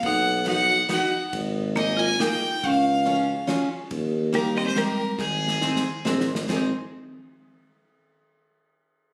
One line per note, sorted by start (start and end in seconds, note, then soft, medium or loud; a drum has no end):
0.03 0.87 B1 medium
0.03 0.45 D#4 loud
0.03 0.44 F#5 loud
0.03 kick loud
0.03 ride medium
0.46 0.66 B3 medium
0.46 0.67 D#4 medium
0.46 0.88 D#4 medium
0.46 0.67 F#4 medium
0.46 0.87 F#5 loud
0.46 ride soft
0.89 1.09 B3 medium
0.89 1.09 D#4 medium
0.89 1.30 D#4 medium
0.89 1.10 F#4 medium
0.89 1.31 F#5 medium
0.89 snare medium
0.89 ride medium
1.33 2.17 G#1 loud
1.33 kick medium
1.33 ride medium
1.75 1.96 A#3 medium
1.75 1.97 A#3 medium
1.75 1.96 D#4 medium
1.75 1.97 G#4 medium
1.75 2.01 D#5 loud
1.75 ride soft
1.97 2.19 F4 medium
1.97 2.22 G#5 loud
2.19 2.39 A#3 medium
2.19 2.40 D#4 medium
2.19 2.63 D#4 medium
2.19 2.40 G#4 medium
2.19 2.67 G5 loud
2.19 snare medium
2.19 ride soft
2.63 3.46 C#2 medium
2.63 3.49 C#4 medium
2.63 3.49 F5 loud
2.63 kick loud
2.63 ride medium
3.06 3.25 C#4 medium
3.06 3.26 F4 medium
3.06 3.26 G#4 medium
3.06 ride soft
3.47 3.67 C#4 medium
3.47 3.68 F4 medium
3.47 3.68 G#4 medium
3.47 snare medium
3.47 ride medium
3.91 4.74 D#2 loud
3.91 kick loud
3.91 ride medium
4.33 4.54 G3 medium
4.33 4.53 A#3 medium
4.33 4.53 D#4 medium
4.33 4.53 G4 medium
4.33 4.58 A#4 loud
4.33 ride medium
4.57 4.67 C4 loud
4.57 4.66 D#5 loud
4.66 4.76 G#3 medium
4.66 4.79 C5 loud
4.76 5.20 G3 medium
4.76 4.95 A#3 medium
4.76 4.96 D#4 medium
4.76 4.96 G4 medium
4.76 5.19 A#4 loud
4.76 snare medium
4.76 ride medium
5.18 5.75 G#1 medium
5.18 6.02 D#3 medium
5.18 6.02 G#4 loud
5.18 kick loud
5.18 snare medium
5.48 snare medium
5.61 5.82 C4 medium
5.61 5.82 D#4 medium
5.61 5.82 G#4 medium
5.61 snare medium
5.76 snare medium
6.05 6.25 A#1 medium
6.05 6.25 C4 medium
6.05 6.25 D#4 medium
6.05 6.26 G#4 medium
6.05 snare medium
6.20 snare medium
6.27 6.47 G#1 medium
6.35 snare medium
6.49 6.70 G#1 medium
6.49 6.70 C4 medium
6.49 6.70 D#4 medium
6.49 6.70 G#4 medium
6.49 kick medium
6.49 snare medium
6.49 crash medium